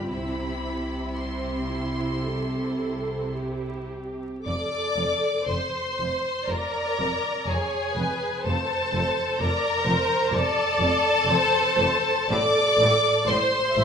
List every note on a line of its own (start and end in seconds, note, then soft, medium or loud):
0.08 4.25 C2 medium
0.08 4.25 C3 soft
0.08 1.04 C4 soft
0.08 1.06 E4 soft
0.08 3.89 E4 soft
0.08 1.15 B5 medium
1.17 1.68 C4 soft
1.17 3.37 C6 medium
1.71 2.26 E4 soft
2.26 3.37 A4 medium
3.36 4.46 G4 soft
4.45 4.54 F1 medium
4.45 4.54 F2 medium
4.45 5.44 A4 medium
4.45 5.44 D5 medium
4.45 5.44 D6 loud
4.97 5.05 F1 medium
4.97 5.05 F2 medium
5.48 5.56 F1 medium
5.48 5.58 F2 medium
5.48 6.50 C5 medium
5.48 6.50 C6 medium
5.99 6.07 F1 medium
5.99 6.09 F2 medium
6.48 6.56 F1 medium
6.48 6.59 F2 medium
6.48 7.48 A#4 medium
6.48 7.48 D5 medium
6.48 7.48 A#5 loud
6.99 7.07 F1 medium
6.99 7.09 F2 medium
7.47 7.55 F1 medium
7.47 7.58 F2 medium
7.47 8.46 G#4 medium
7.47 7.97 C#5 medium
7.47 8.46 G#5 loud
7.95 8.04 F1 medium
7.95 8.06 F2 medium
7.95 8.44 B4 medium
8.43 8.54 F1 medium
8.43 9.39 A4 medium
8.43 9.40 C5 medium
8.43 9.39 A5 loud
8.48 8.56 F2 medium
8.93 9.01 F1 medium
8.93 9.02 F2 medium
9.40 9.48 F1 medium
9.40 9.51 F2 medium
9.40 10.35 A#4 loud
9.40 9.87 D5 medium
9.40 10.32 A#5 loud
9.87 9.95 F1 medium
9.87 9.96 F2 medium
9.87 10.33 C5 medium
10.32 10.40 F1 medium
10.32 10.43 F2 medium
10.32 12.31 A4 loud
10.32 11.28 D5 medium
10.32 12.30 A5 loud
10.79 10.87 F1 medium
10.79 10.90 F2 medium
11.26 11.34 F1 medium
11.26 11.37 F2 medium
11.26 12.31 C5 loud
11.77 11.85 F1 medium
11.77 11.87 F2 medium
12.29 12.37 A1 medium
12.29 12.40 A2 medium
12.29 13.28 A4 medium
12.29 13.27 D5 loud
12.29 13.28 D6 loud
12.78 12.86 A1 medium
12.82 12.90 A2 medium
13.27 13.35 A1 medium
13.27 13.37 A2 medium
13.27 13.76 C5 medium
13.27 13.84 C5 loud
13.27 13.84 C6 loud
13.75 13.83 A1 medium
13.75 13.84 A2 medium
13.75 13.84 E5 medium